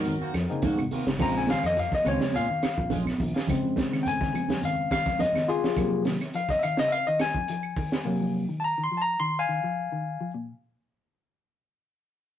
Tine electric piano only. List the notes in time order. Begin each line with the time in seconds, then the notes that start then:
0.50 A#3 C4 D#4 G#4
1.20 C#3 G#3 C4 A#5
1.37 G#5
1.51 F5
1.66 D#5
1.79 F5
1.95 D#5
2.06 C#3 G#3 C4 C#5
2.36 F5
3.49 C#3 G#3 C4
4.03 G5
4.08 G#5
4.65 F5
4.92 F5
5.20 D#5
5.48 F4 G#4
5.77 C3 F#3 A#3
6.36 F5
6.50 D#5
6.59 E5
6.63 F5
6.79 D#5
6.88 E5
6.92 F5
7.07 D#5
7.21 G#5
8.05 C3 F#3 A#3
8.60 A5
8.64 A#5
8.84 C6
8.97 A5
9.02 A#5
9.20 C6
9.39 F5 G#5